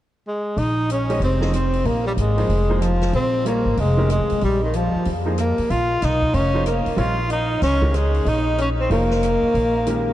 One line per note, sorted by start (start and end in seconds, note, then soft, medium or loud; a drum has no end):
0.27 0.59 G#3 medium
0.57 1.18 A#1 medium
0.57 0.90 D#4 medium
0.57 open hi-hat soft
0.90 1.20 C#4 medium
0.90 closed hi-hat soft
1.10 1.40 G#3 soft
1.10 1.40 C#4 soft
1.10 1.40 G4 soft
1.10 1.40 C5 soft
1.10 1.40 D#5 medium
1.10 open hi-hat soft
1.20 1.82 F1 medium
1.20 1.52 C4 medium
1.20 open hi-hat soft
1.40 1.52 F3 medium
1.40 1.52 A#3 soft
1.40 1.52 D#4 soft
1.40 1.52 G#4 soft
1.40 1.52 D#5 medium
1.40 snare soft
1.54 1.88 C4 medium
1.54 1.87 C4 medium
1.54 cross-stick soft
1.54 closed hi-hat soft
1.74 open hi-hat soft
1.85 2.15 A#1 medium
1.85 2.05 A#3 medium
1.85 2.06 A#3 medium
1.85 open hi-hat soft
2.06 2.11 G3 medium
2.06 2.12 G3 medium
2.17 2.47 G#1 medium
2.17 2.82 G#3 medium
2.17 2.83 G#3 medium
2.17 closed hi-hat soft
2.37 2.48 F3 medium
2.37 2.48 A#3 soft
2.37 2.48 D#4 soft
2.37 2.49 G#4 soft
2.37 2.49 C5 medium
2.37 open hi-hat soft
2.49 3.10 F1 medium
2.49 open hi-hat soft
2.69 2.80 F3 medium
2.69 2.80 A#3 medium
2.69 2.81 D#4 soft
2.69 2.81 G#4 medium
2.69 2.81 C5 medium
2.81 3.13 F3 medium
2.81 3.14 F3 medium
2.81 cross-stick soft
2.81 closed hi-hat soft
3.02 snare soft
3.02 open hi-hat soft
3.13 3.62 A#1 medium
3.13 3.44 C4 medium
3.13 open hi-hat soft
3.45 3.63 G3 soft
3.45 3.80 A#3 medium
3.45 3.81 A#3 medium
3.45 3.64 C4 soft
3.45 3.64 F4 soft
3.45 3.64 A#4 soft
3.45 3.64 C#5 soft
3.45 closed hi-hat soft
3.65 3.77 G#1 medium
3.77 4.17 F1 medium
3.77 4.09 G#3 medium
3.77 4.11 G#3 medium
3.77 open hi-hat soft
3.97 4.08 D#3 soft
3.97 4.08 G#3 soft
3.97 4.09 C#4 soft
3.97 4.09 G4 soft
3.97 4.09 A#4 medium
4.10 4.40 G#3 medium
4.10 cross-stick soft
4.10 closed hi-hat soft
4.20 4.30 C#2 soft
4.30 4.41 F2 medium
4.30 open hi-hat soft
4.41 4.90 A#1 medium
4.41 4.60 G3 medium
4.41 4.61 G3 medium
4.41 open hi-hat soft
4.62 4.75 D#3 medium
4.62 4.77 D#3 medium
4.73 5.12 F3 medium
4.73 5.13 F3 medium
4.73 closed hi-hat soft
4.95 muted upright bass stroke soft
5.05 5.54 F2 medium
5.05 open hi-hat soft
5.26 5.36 F3 soft
5.26 5.37 A#3 soft
5.26 5.37 D#4 soft
5.26 5.37 G#4 soft
5.26 5.37 C5 medium
5.38 5.72 A#3 medium
5.38 cross-stick soft
5.38 closed hi-hat soft
5.58 muted upright bass stroke soft
5.58 open hi-hat soft
5.70 6.00 A#1 medium
5.70 6.03 F4 medium
5.70 6.06 F4 medium
5.70 open hi-hat soft
6.02 6.32 B1 medium
6.02 6.36 D#4 medium
6.02 snare soft
6.02 closed hi-hat soft
6.22 kick soft
6.34 6.82 F1 medium
6.34 6.66 C#4 medium
6.34 open hi-hat soft
6.54 6.65 F3 medium
6.54 6.65 A#3 soft
6.54 6.65 D#4 soft
6.54 6.65 G#4 soft
6.54 6.65 C5 medium
6.66 7.01 A#3 medium
6.66 6.99 A#3 medium
6.66 cross-stick soft
6.66 closed hi-hat soft
6.86 muted upright bass stroke soft
6.86 open hi-hat soft
6.96 7.58 A#1 medium
6.96 7.15 G3 soft
6.96 7.15 C4 soft
6.96 7.16 F4 soft
6.96 7.29 F4 medium
6.96 7.31 F4 medium
6.96 7.16 A#4 soft
6.96 7.16 C#5 medium
6.96 open hi-hat soft
7.30 7.60 D#4 medium
7.30 7.61 D#4 medium
7.30 closed hi-hat soft
7.62 8.23 C#2 medium
7.62 7.95 C#4 medium
7.62 7.97 C#4 medium
7.62 snare soft
7.62 open hi-hat soft
7.81 7.92 D#3 medium
7.81 7.93 G#3 medium
7.81 7.93 C#4 medium
7.81 7.93 G4 soft
7.81 7.93 A#4 medium
7.81 kick soft
7.93 8.27 G#3 medium
7.93 8.30 G#3 medium
7.93 cross-stick soft
7.93 closed hi-hat soft
8.14 open hi-hat soft
8.25 8.87 A#1 medium
8.25 8.58 D#4 medium
8.25 8.59 D#4 medium
8.25 open hi-hat soft
8.58 8.67 C#4 medium
8.58 8.69 C#4 medium
8.58 closed hi-hat soft
8.80 8.90 C4 medium
8.90 9.39 F1 medium
8.90 9.08 F3 medium
8.90 9.08 A#3 soft
8.90 10.13 A#3 medium
8.90 9.09 D#4 soft
8.90 9.09 G#4 soft
8.90 9.09 C5 medium
8.90 open hi-hat soft
9.11 snare soft
9.23 cross-stick soft
9.23 closed hi-hat soft
9.43 muted upright bass stroke soft
9.54 10.13 A#1 medium
9.54 open hi-hat soft
9.86 10.13 D#3 soft
9.86 10.13 G#3 soft
9.86 10.13 C#4 soft
9.86 10.13 G4 soft
9.86 10.13 A#4 soft
9.86 closed hi-hat soft